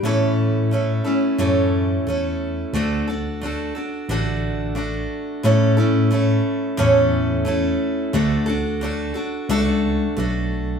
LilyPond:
<<
  \new Staff \with { instrumentName = "Steel-string acoustic guitar" } { \time 4/4 \key d \major \tempo 4 = 89 <a, e a cis' e' a'>4 <a cis' e' a'>8 <a cis' e' a'>8 <a, e a cis' e' a'>4 <a cis' e' a'>4 | <d a d' fis' a'>8 <d' fis' a'>8 <a d' fis' a'>8 <d' fis' a'>8 <d a d' fis' a'>4 <a d' fis' a'>4 | <a, e a cis' e' a'>8 <a cis' e' a'>8 <a cis' e' a'>4 <a, e a cis' e' a'>4 <a cis' e' a'>4 | <d a d' fis' a'>8 <d' fis' a'>8 <a d' fis' a'>8 <d' fis' a'>8 <a d' fis' a'>4 <a d' fis' a'>4 | }
  \new Staff \with { instrumentName = "Tine electric piano" } { \clef bass \time 4/4 \key d \major a,2 fis,4 e,4 | d,2 a,,2 | a,2 e,2 | d,2 cis,4 b,,4 | }
>>